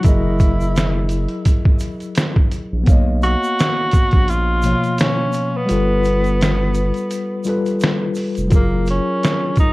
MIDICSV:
0, 0, Header, 1, 5, 480
1, 0, Start_track
1, 0, Key_signature, 6, "major"
1, 0, Tempo, 705882
1, 31, Time_signature, 4, 2, 24, 8
1, 6616, End_track
2, 0, Start_track
2, 0, Title_t, "Tine electric piano"
2, 0, Program_c, 0, 4
2, 0, Control_c, 0, 64, 127
2, 3, Note_on_c, 0, 54, 60
2, 13, Note_on_c, 0, 64, 57
2, 30, Note_on_c, 0, 68, 65
2, 39, Control_c, 0, 64, 0
2, 44, Note_on_c, 0, 70, 59
2, 57, Note_on_c, 0, 75, 80
2, 143, Control_c, 0, 64, 127
2, 1910, Note_off_c, 0, 54, 0
2, 1915, Note_off_c, 0, 64, 0
2, 1924, Note_off_c, 0, 68, 0
2, 1929, Note_on_c, 0, 59, 55
2, 1930, Note_off_c, 0, 70, 0
2, 1937, Note_off_c, 0, 75, 0
2, 1945, Note_on_c, 0, 58, 55
2, 1959, Control_c, 0, 64, 0
2, 1959, Note_on_c, 0, 77, 60
2, 1972, Note_on_c, 0, 73, 54
2, 1985, Note_on_c, 0, 75, 67
2, 2081, Control_c, 0, 64, 127
2, 3116, Note_off_c, 0, 59, 0
2, 3124, Note_off_c, 0, 58, 0
2, 3131, Note_off_c, 0, 77, 0
2, 3138, Note_off_c, 0, 73, 0
2, 3145, Note_off_c, 0, 75, 0
2, 3147, Note_on_c, 0, 47, 46
2, 3153, Note_on_c, 0, 58, 47
2, 3163, Note_on_c, 0, 53, 44
2, 3169, Note_on_c, 0, 73, 46
2, 3174, Note_on_c, 0, 77, 60
2, 3848, Note_on_c, 0, 55, 68
2, 3869, Note_off_c, 0, 47, 0
2, 3869, Note_on_c, 0, 65, 58
2, 3872, Note_off_c, 0, 58, 0
2, 3877, Note_off_c, 0, 53, 0
2, 3878, Control_c, 0, 64, 0
2, 3880, Note_off_c, 0, 73, 0
2, 3883, Note_off_c, 0, 77, 0
2, 3884, Note_on_c, 0, 69, 53
2, 3903, Note_on_c, 0, 71, 69
2, 4014, Control_c, 0, 64, 127
2, 5035, Note_off_c, 0, 55, 0
2, 5046, Note_off_c, 0, 65, 0
2, 5054, Note_off_c, 0, 69, 0
2, 5064, Note_off_c, 0, 71, 0
2, 5065, Note_on_c, 0, 55, 55
2, 5074, Note_on_c, 0, 65, 56
2, 5083, Note_on_c, 0, 69, 53
2, 5095, Note_on_c, 0, 71, 66
2, 5764, Note_on_c, 0, 54, 60
2, 5773, Note_off_c, 0, 65, 0
2, 5781, Note_on_c, 0, 65, 60
2, 5788, Note_off_c, 0, 55, 0
2, 5797, Note_off_c, 0, 69, 0
2, 5799, Note_on_c, 0, 68, 55
2, 5800, Control_c, 0, 64, 0
2, 5803, Note_off_c, 0, 71, 0
2, 5818, Note_on_c, 0, 70, 68
2, 5917, Control_c, 0, 64, 127
2, 6616, Note_off_c, 0, 54, 0
2, 6616, Note_off_c, 0, 65, 0
2, 6616, Note_off_c, 0, 68, 0
2, 6616, Note_off_c, 0, 70, 0
2, 6616, End_track
3, 0, Start_track
3, 0, Title_t, "Tenor saxophone"
3, 0, Program_c, 1, 66
3, 34, Note_on_c, 1, 64, 86
3, 965, Note_off_c, 1, 64, 0
3, 2199, Note_on_c, 1, 66, 119
3, 2922, Note_on_c, 1, 65, 110
3, 2932, Note_off_c, 1, 66, 0
3, 3397, Note_off_c, 1, 65, 0
3, 3405, Note_on_c, 1, 61, 104
3, 3787, Note_on_c, 1, 59, 94
3, 3798, Note_off_c, 1, 61, 0
3, 5321, Note_off_c, 1, 59, 0
3, 5816, Note_on_c, 1, 58, 84
3, 6028, Note_off_c, 1, 58, 0
3, 6055, Note_on_c, 1, 61, 94
3, 6496, Note_off_c, 1, 61, 0
3, 6526, Note_on_c, 1, 63, 96
3, 6616, Note_off_c, 1, 63, 0
3, 6616, End_track
4, 0, Start_track
4, 0, Title_t, "Sub bass"
4, 0, Program_c, 2, 38
4, 35, Note_on_c, 2, 30, 115
4, 863, Note_off_c, 2, 30, 0
4, 1853, Note_on_c, 2, 34, 99
4, 1941, Note_off_c, 2, 34, 0
4, 1957, Note_on_c, 2, 35, 116
4, 2283, Note_off_c, 2, 35, 0
4, 2809, Note_on_c, 2, 34, 86
4, 3228, Note_off_c, 2, 34, 0
4, 3879, Note_on_c, 2, 31, 112
4, 4705, Note_off_c, 2, 31, 0
4, 5696, Note_on_c, 2, 29, 102
4, 5783, Note_off_c, 2, 29, 0
4, 5792, Note_on_c, 2, 30, 111
4, 6120, Note_off_c, 2, 30, 0
4, 6616, End_track
5, 0, Start_track
5, 0, Title_t, "Drums"
5, 21, Note_on_c, 9, 42, 76
5, 31, Note_on_c, 9, 36, 111
5, 34, Note_on_c, 9, 82, 71
5, 89, Note_off_c, 9, 42, 0
5, 99, Note_off_c, 9, 36, 0
5, 102, Note_off_c, 9, 82, 0
5, 270, Note_on_c, 9, 82, 44
5, 271, Note_on_c, 9, 36, 93
5, 275, Note_on_c, 9, 42, 66
5, 338, Note_off_c, 9, 82, 0
5, 339, Note_off_c, 9, 36, 0
5, 343, Note_off_c, 9, 42, 0
5, 413, Note_on_c, 9, 82, 48
5, 481, Note_off_c, 9, 82, 0
5, 519, Note_on_c, 9, 42, 73
5, 520, Note_on_c, 9, 82, 71
5, 528, Note_on_c, 9, 38, 92
5, 587, Note_off_c, 9, 42, 0
5, 588, Note_off_c, 9, 82, 0
5, 596, Note_off_c, 9, 38, 0
5, 741, Note_on_c, 9, 42, 52
5, 750, Note_on_c, 9, 82, 54
5, 809, Note_off_c, 9, 42, 0
5, 818, Note_off_c, 9, 82, 0
5, 873, Note_on_c, 9, 42, 36
5, 941, Note_off_c, 9, 42, 0
5, 987, Note_on_c, 9, 42, 78
5, 990, Note_on_c, 9, 36, 89
5, 995, Note_on_c, 9, 82, 72
5, 1055, Note_off_c, 9, 42, 0
5, 1058, Note_off_c, 9, 36, 0
5, 1063, Note_off_c, 9, 82, 0
5, 1125, Note_on_c, 9, 36, 104
5, 1193, Note_off_c, 9, 36, 0
5, 1220, Note_on_c, 9, 82, 67
5, 1230, Note_on_c, 9, 42, 67
5, 1288, Note_off_c, 9, 82, 0
5, 1298, Note_off_c, 9, 42, 0
5, 1363, Note_on_c, 9, 42, 36
5, 1370, Note_on_c, 9, 82, 44
5, 1431, Note_off_c, 9, 42, 0
5, 1438, Note_off_c, 9, 82, 0
5, 1464, Note_on_c, 9, 42, 72
5, 1474, Note_on_c, 9, 82, 60
5, 1480, Note_on_c, 9, 38, 123
5, 1532, Note_off_c, 9, 42, 0
5, 1542, Note_off_c, 9, 82, 0
5, 1548, Note_off_c, 9, 38, 0
5, 1607, Note_on_c, 9, 36, 105
5, 1675, Note_off_c, 9, 36, 0
5, 1711, Note_on_c, 9, 42, 72
5, 1714, Note_on_c, 9, 82, 49
5, 1779, Note_off_c, 9, 42, 0
5, 1782, Note_off_c, 9, 82, 0
5, 1947, Note_on_c, 9, 42, 72
5, 1955, Note_on_c, 9, 36, 117
5, 1960, Note_on_c, 9, 82, 72
5, 2015, Note_off_c, 9, 42, 0
5, 2023, Note_off_c, 9, 36, 0
5, 2028, Note_off_c, 9, 82, 0
5, 2191, Note_on_c, 9, 82, 47
5, 2198, Note_on_c, 9, 42, 64
5, 2259, Note_off_c, 9, 82, 0
5, 2266, Note_off_c, 9, 42, 0
5, 2336, Note_on_c, 9, 82, 47
5, 2404, Note_off_c, 9, 82, 0
5, 2442, Note_on_c, 9, 42, 69
5, 2444, Note_on_c, 9, 82, 67
5, 2451, Note_on_c, 9, 38, 102
5, 2510, Note_off_c, 9, 42, 0
5, 2512, Note_off_c, 9, 82, 0
5, 2519, Note_off_c, 9, 38, 0
5, 2661, Note_on_c, 9, 42, 54
5, 2674, Note_on_c, 9, 36, 96
5, 2675, Note_on_c, 9, 82, 56
5, 2729, Note_off_c, 9, 42, 0
5, 2742, Note_off_c, 9, 36, 0
5, 2743, Note_off_c, 9, 82, 0
5, 2796, Note_on_c, 9, 42, 35
5, 2807, Note_on_c, 9, 36, 94
5, 2864, Note_off_c, 9, 42, 0
5, 2875, Note_off_c, 9, 36, 0
5, 2910, Note_on_c, 9, 42, 79
5, 2924, Note_on_c, 9, 82, 69
5, 2978, Note_off_c, 9, 42, 0
5, 2992, Note_off_c, 9, 82, 0
5, 3144, Note_on_c, 9, 82, 70
5, 3153, Note_on_c, 9, 42, 64
5, 3212, Note_off_c, 9, 82, 0
5, 3221, Note_off_c, 9, 42, 0
5, 3289, Note_on_c, 9, 42, 36
5, 3291, Note_on_c, 9, 82, 44
5, 3357, Note_off_c, 9, 42, 0
5, 3359, Note_off_c, 9, 82, 0
5, 3388, Note_on_c, 9, 42, 73
5, 3389, Note_on_c, 9, 82, 65
5, 3405, Note_on_c, 9, 38, 120
5, 3456, Note_off_c, 9, 42, 0
5, 3457, Note_off_c, 9, 82, 0
5, 3473, Note_off_c, 9, 38, 0
5, 3623, Note_on_c, 9, 82, 50
5, 3633, Note_on_c, 9, 42, 70
5, 3691, Note_off_c, 9, 82, 0
5, 3701, Note_off_c, 9, 42, 0
5, 3867, Note_on_c, 9, 42, 73
5, 3875, Note_on_c, 9, 82, 71
5, 3935, Note_off_c, 9, 42, 0
5, 3943, Note_off_c, 9, 82, 0
5, 4107, Note_on_c, 9, 82, 48
5, 4117, Note_on_c, 9, 42, 66
5, 4175, Note_off_c, 9, 82, 0
5, 4185, Note_off_c, 9, 42, 0
5, 4243, Note_on_c, 9, 42, 36
5, 4253, Note_on_c, 9, 82, 50
5, 4311, Note_off_c, 9, 42, 0
5, 4321, Note_off_c, 9, 82, 0
5, 4360, Note_on_c, 9, 42, 73
5, 4363, Note_on_c, 9, 82, 70
5, 4369, Note_on_c, 9, 38, 99
5, 4428, Note_off_c, 9, 42, 0
5, 4431, Note_off_c, 9, 82, 0
5, 4437, Note_off_c, 9, 38, 0
5, 4587, Note_on_c, 9, 82, 58
5, 4588, Note_on_c, 9, 42, 54
5, 4655, Note_off_c, 9, 82, 0
5, 4656, Note_off_c, 9, 42, 0
5, 4720, Note_on_c, 9, 42, 34
5, 4736, Note_on_c, 9, 82, 46
5, 4788, Note_off_c, 9, 42, 0
5, 4804, Note_off_c, 9, 82, 0
5, 4833, Note_on_c, 9, 42, 83
5, 4835, Note_on_c, 9, 82, 68
5, 4901, Note_off_c, 9, 42, 0
5, 4903, Note_off_c, 9, 82, 0
5, 5059, Note_on_c, 9, 82, 66
5, 5078, Note_on_c, 9, 42, 66
5, 5127, Note_off_c, 9, 82, 0
5, 5146, Note_off_c, 9, 42, 0
5, 5207, Note_on_c, 9, 82, 43
5, 5211, Note_on_c, 9, 42, 37
5, 5275, Note_off_c, 9, 82, 0
5, 5279, Note_off_c, 9, 42, 0
5, 5306, Note_on_c, 9, 82, 66
5, 5311, Note_on_c, 9, 42, 71
5, 5328, Note_on_c, 9, 38, 113
5, 5374, Note_off_c, 9, 82, 0
5, 5379, Note_off_c, 9, 42, 0
5, 5396, Note_off_c, 9, 38, 0
5, 5541, Note_on_c, 9, 82, 50
5, 5553, Note_on_c, 9, 46, 53
5, 5609, Note_off_c, 9, 82, 0
5, 5621, Note_off_c, 9, 46, 0
5, 5678, Note_on_c, 9, 42, 36
5, 5691, Note_on_c, 9, 82, 48
5, 5746, Note_off_c, 9, 42, 0
5, 5759, Note_off_c, 9, 82, 0
5, 5783, Note_on_c, 9, 42, 65
5, 5790, Note_on_c, 9, 82, 65
5, 5791, Note_on_c, 9, 36, 101
5, 5851, Note_off_c, 9, 42, 0
5, 5858, Note_off_c, 9, 82, 0
5, 5859, Note_off_c, 9, 36, 0
5, 6025, Note_on_c, 9, 82, 42
5, 6036, Note_on_c, 9, 42, 62
5, 6093, Note_off_c, 9, 82, 0
5, 6104, Note_off_c, 9, 42, 0
5, 6278, Note_on_c, 9, 42, 70
5, 6281, Note_on_c, 9, 82, 64
5, 6287, Note_on_c, 9, 38, 96
5, 6346, Note_off_c, 9, 42, 0
5, 6349, Note_off_c, 9, 82, 0
5, 6355, Note_off_c, 9, 38, 0
5, 6499, Note_on_c, 9, 42, 54
5, 6506, Note_on_c, 9, 82, 57
5, 6509, Note_on_c, 9, 36, 95
5, 6567, Note_off_c, 9, 42, 0
5, 6574, Note_off_c, 9, 82, 0
5, 6577, Note_off_c, 9, 36, 0
5, 6616, End_track
0, 0, End_of_file